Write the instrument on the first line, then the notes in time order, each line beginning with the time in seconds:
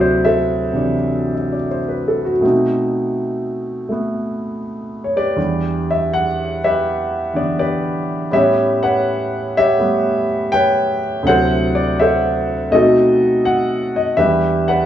grand piano
Already playing: D2 C3 F#3 E4 F#4 A4 D5
0.01 C5
0.25 A4 C5 E5
0.73 C3 E3 D4
1.34 E5
1.52 D5
1.71 C5
1.89 B4
2.08 A4
2.25 F#4
2.41 B2 A3 C4
2.46 D#4
3.89 A3 B3
5.04 C#5
5.16 G4 B4 D5
5.36 E2 E3 G3 D4
5.91 E5
6.13 F#5
6.64 G4 B4 E5
7.34 D3 E3 B3 D5
7.59 G4 B4 D5
8.31 A2 G3 B3 C#4 G4 C#5 E5
8.83 B4 C#5 F#5
9.57 G4 C#5 E5
9.78 G3 A3 B3
10.52 B4 C#5 G5
11.23 D2 C3 F#3 F#5
11.28 E4 A4 C5
11.75 D5
11.99 A4 C5 E5
12.71 B2 A3 C4 D#4 F#4 A4 D#5
13.45 F#5
13.96 D#5
14.17 E2 E3 G3 D4 G4 B4 E5
14.68 B4 D5 F#5